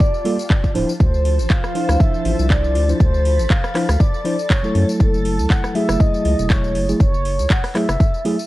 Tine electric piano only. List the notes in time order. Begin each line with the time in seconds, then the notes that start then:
0.25 G3 A#3 F4 A4
0.75 F3 D4 E4 C5
1.74 F3 D4 E4 C5
2.88 F3 D4 E4 C5
3.75 F3 D4 E4 C5
4.24 F3 D4 E4 C5
4.63 F#3 A3 E4 A4
5.74 F#3 A3 E4 G#4
6.88 F#3 A3 E4 G#4
7.75 F#3 A3 E4 G#4
8.25 F#3 A3 E4 G#4